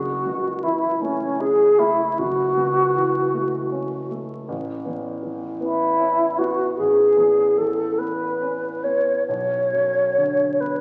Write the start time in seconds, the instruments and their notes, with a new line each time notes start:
Already playing: grand piano F#1, alto flute F#4
0.26 grand piano C#2
0.63 grand piano E3, alto flute E4
1.01 grand piano A3, alto flute C#4
1.40 grand piano C#4, alto flute G#4
1.79 grand piano A3, alto flute E4
2.18 grand piano F#1, alto flute F#4
2.57 grand piano C#2
2.95 grand piano E3
3.34 grand piano A3
3.72 grand piano C#4
4.11 grand piano A3
4.48 grand piano A1
4.86 grand piano E2
5.23 grand piano E3
5.61 grand piano B3, alto flute E4
6.00 grand piano C#4
6.38 grand piano B3, alto flute F#4
6.78 grand piano A1, alto flute G#4
7.17 grand piano E2
7.57 grand piano E3, alto flute A4
7.98 grand piano B3, alto flute B4
8.41 grand piano C#4
8.83 grand piano B3, alto flute C#5
9.27 grand piano B1, alto flute C#5
9.73 grand piano F#2
10.17 grand piano D3
10.60 grand piano B3, alto flute B4